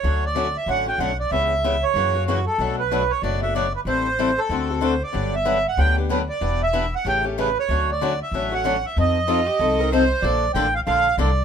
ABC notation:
X:1
M:4/4
L:1/8
Q:"Swing" 1/4=188
K:D
V:1 name="Accordion"
c d2 e f g f d | e3 c3 F A- | A B2 c d e d B | =c3 A3 c d- |
d e2 f g z B d- | d e2 f g z B c- | c d2 e2 f2 e | _e6 =c2 |
[K:Bb] d2 g f f2 d2 |]
V:2 name="Violin"
z8 | z8 | z8 | z8 |
z8 | z8 | z8 | z2 =F G A _B =c2 |
[K:Bb] z8 |]
V:3 name="Steel-string acoustic guitar"
[D,F,A,CF] z [D,F,A,CF] z [D,F,A,CF] [A,CF] [D,F,A,CF] z | [C,E,B,CG] z [C,E,B,CG] z [C,E,^A,CF] [A,CF] [C,E,A,CF] z | [B,,F,A,DF] z [B,,F,A,DF] z [B,,F,A,DF] [A,DF] [B,,F,A,DF] z | [E,G,=CEA] z [E,G,CEA] z [D,A,CFA] [CFA] [D,A,CFA] z |
[D,F,B,DG] z [D,F,B,DG] z [D,F,B,DG] [B,DG] [D,F,B,DG] z | [E,B,DG] z [E,B,DG] z [C,E,A,CG] [A,CG] [C,E,A,CG] z | [D,F,A,CF] z [D,F,A,CF] z [D,F,A,CF] [A,CF] [D,F,A,CF] z | [=F,=C_EA] z [F,CEA] z [F,CEA] [CEA] [F,CEA] z |
[K:Bb] [D,F,B,DA] z [D,F,B,DA] z [D,F,B,DA] z [D,F,B,DA] z |]
V:4 name="Upright bass" clef=bass
D,,4 A,,,2 B,,,2 | C,,4 F,,4 | B,,,4 F,,,4 | A,,,4 D,,4 |
G,,,4 D,,4 | E,,,4 A,,,4 | D,,4 A,,,4 | =F,,4 =C,,4 |
[K:Bb] B,,,2 A,,,2 B,,,2 C,,2 |]